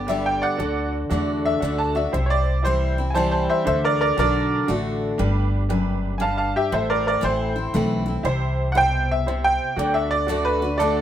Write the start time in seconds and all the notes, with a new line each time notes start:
Already playing: G1
0.07 D3 G3 B3 G4 B4 D5 E5
0.11 G4
0.26 G5
0.42 D5 F#5
0.57 D2 D3 F#4 A4 D5
1.10 E2 D3 A3 D4 F#4 A4 D5
1.45 E5
1.60 D2 D3 A3 D4 F#4 A4 D5
1.65 F#4
1.78 A5
1.95 D4 F#4 E5
2.12 C2 C3 E4 G4 C5
2.26 C#5
2.30 D5
2.62 E3 G3 C4 E4 G4 C5
2.67 E4
2.98 C4 E4
3.10 E4 G#5
3.14 E3 G3 C4 E4 G4 C5 A5
3.31 C5 A5
3.49 C5 E5
3.64 D2 D3 D4 F#4 A4 C5 E5
3.84 A#4 D5
4.01 A#4 D5
4.17 B1 D3 D4 F#4 A#4 D5 A5
4.67 A1 D3 A3 D4 F#4 A4
5.18 G1 G2 D4 G4 B4
5.69 F#2 D4 G4 B4
6.18 G2 D4 G4 B4 F5 G#5 A5
6.37 F5 A5
6.56 G4 E5
6.72 A1 A2 E4 A4 C5 E5
6.90 A#4 D5
7.07 A#4 D5
7.21 A1 E3 A3 C4 E4 A4 C5
7.56 C4 E4
7.73 B1 E3 A3 C4 E4 A4 B4
8.06 C4 E4
8.23 C2 C3 E4 G4 C5
8.72 B2 E4 G4 F#5
8.76 C5 G5
9.11 E5
9.26 C3 E4 G4 C5
9.44 G5
9.76 D2 D3 F#4 A4 D5
9.94 E5
10.11 D5
10.27 D3 A3 D4 F#4 A4 D5
10.45 B4
10.62 D4 F#4
10.77 D3 A3 F#4 A4 D5
10.81 D4 F#4